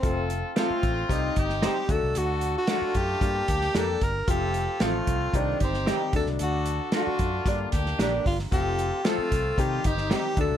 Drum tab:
HH |x-x-x-x-x-x-x-x-|x-x-x-x-x-x-x-x-|x-x-x-x-x-x-x-x-|x-x-x-x-x-x-x-o-|
SD |----o------oo---|----o------oo---|----o------oo--o|----o-----ooo--o|
BD |o-----o-o-o---o-|------o-o-o---o-|o-----o-o-o---o-|------o-o-o---o-|

HH |x-x-x-x-x-x-x-x-|
SD |----o------oo---|
BD |o-----o-o-o---o-|